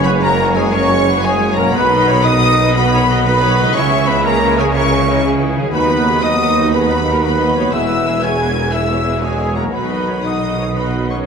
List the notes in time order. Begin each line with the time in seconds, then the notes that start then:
Already playing: F#1 F#2 C#3 F#3 G#3 C#4 G#4 C#5
0.03 B3 F#4 G#4 B4 B5
0.20 A#3 C#4 F#4 A#4 A#5
0.38 F#4 G#4
0.54 G#3 C#4 F#4 G#4 G#5
0.70 C#3 G#3 C#4 F#4 G#4 A#4 C#5 C#6
0.74 C#5
0.89 C#4 F#4 G#4
1.06 F#4 G#4 B4
1.23 C#3 G#3 C#4 F#4 G#4 C#5 G#5
1.41 F#4 G#4
1.55 B2 A#3 C#4 F#4 A#4 A#5
1.61 F#3
1.65 D#4
1.70 B1 D#3 F#3 B3 F#4 B4 B5
1.74 B1 B2 B4
1.91 D#4 B4 D#5
2.08 B3 F#4 C#5
2.23 D#3 F#3 D#4 B4 D#5 D#6
2.42 B3 F#4
2.59 D#4 B4
2.73 D#3 F#3 B3 F#4 B4 D#5 B5
2.93 D#4 B4 C#5
3.10 B3 F#4 D#5
3.25 D#3 F#3 B3 D#4 B4 B5
3.40 B3 F#4 C#5
3.58 C#3 D#4 B4 D#5
3.62 G#3
3.66 E4
3.71 E3 C#4 G#4 C#5
3.75 C#2 C#3 G#3 E4 C#5 E5 C#6
3.91 C#4 G#4
4.07 B3 E4 B4 B5
4.24 A#3 C#4 G#4 A#4 C#5 A#5
4.42 E4
4.58 G#3 C#4 G#4 G#5
4.74 E3 G#3 C#4 E4 A#4 C#5 C#6
4.91 C#4 G#4
5.08 E4 A#4
5.24 C#4 G#4
5.42 E4
5.56 D#3 C#4 G#4
5.60 F#3
5.65 F#4
5.69 F#3 B3 B4 B5
5.73 D#2 B3 D#4 F#4 B4
5.90 D#4 F#4 B4
6.06 D#4 F#4 G#4
6.22 F#3 B3 D#4 F#4 D#5 D#6
6.40 D#4 F#4
6.56 D#4 F#4
6.71 F#3 B3 D#4 F#4 G#4 B4 B5
6.89 D#4 F#4
7.06 D#4 F#4 A#4
7.23 F#3 B3 D#4 F#4 B4 B5
7.40 D#4 F#4 D#5
7.55 E3 D#4 F#4 C#5
7.60 G#3
7.64 F#4
7.69 E4 G#4 B4 E5 E6
7.73 E1 E2 F#3 G#3 B4 E5
7.89 F#4 B4
8.07 E4 G#4
8.22 F#3 G#3 F#4 G#4 B4 C#5 G#5 G#6
8.40 E4 G#4 B4
8.55 F#4 A#4 B4
8.71 F#3 G#3 E4 G#4 B4 E5 E6
8.88 F#4 B4 C#5
9.04 E4 G#4 B4
9.22 F#3 G#3 F#4 G#4 B4 C#5 G#5
9.26 G#4
9.38 E4 G#4
9.55 B2 A#3 F#4 A#4 B4 A#5
9.61 F#3
9.65 D#4
9.70 D#3 F#3 D#4 F#4 B4 B5
9.75 B1 B2 B3 B4
9.90 D#5
10.08 C#5
10.23 D#3 F#3 D#4 F#4 B4 D#5 D#6
10.40 D#5
10.59 C#5
10.75 D#3 F#3 B3 D#4 F#4 B4 D#5 B5
11.10 C#4 C#5 C#6